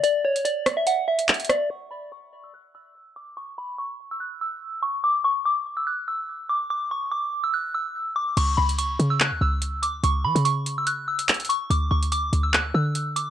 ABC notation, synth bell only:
X:1
M:4/4
L:1/16
Q:1/4=144
K:C#phr
V:1 name="Synth bell"
d2 c2 d3 e f2 e4 d2 | c'2 b2 c'3 e' f'2 e'4 d'2 | c'2 b2 c'3 e' f'2 e'4 c'2 | d'2 c'2 d'3 e' f'2 e'4 d'2 |
d'2 c'2 d'3 e' f'2 e'4 d'2 | c'2 b2 c'3 e' f'2 e'4 d'2 | c'2 b2 c'3 e' f'2 e'4 c'2 | d'2 c'2 d'3 e' f'2 e'4 d'2 |]